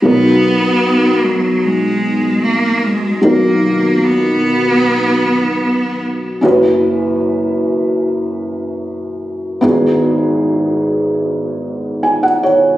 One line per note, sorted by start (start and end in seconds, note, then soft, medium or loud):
0.02 3.20 B1 soft
0.02 3.20 B2 soft
0.02 3.19 F#3 soft
0.02 1.26 B3 medium
0.02 3.19 D#4 soft
0.02 3.20 F#4 soft
0.02 3.20 A#4 soft
1.24 1.65 F#3 medium
1.64 2.46 G#3 medium
2.45 2.86 A#3 medium
2.84 3.24 G#3 medium
3.22 6.39 B1 soft
3.22 6.39 B2 soft
3.22 6.38 F#3 soft
3.22 4.06 A#3 medium
3.22 6.39 D#4 soft
3.22 6.40 F#4 soft
3.22 6.40 A#4 soft
4.04 6.04 B3 medium
6.41 9.59 F#1 medium
6.41 9.59 F#2 medium
6.41 9.58 C#4 medium
6.41 9.59 E4 soft
6.41 9.60 F#4 medium
6.41 9.60 B4 medium
9.61 12.78 G#1 medium
9.61 12.78 G#2 medium
9.61 12.78 B3 medium
9.61 12.78 E4 medium
9.61 12.78 F#4 medium
9.61 12.78 G#4 medium
12.03 12.22 G#5 soft
12.23 12.42 F#5 soft
12.43 12.78 C#5 medium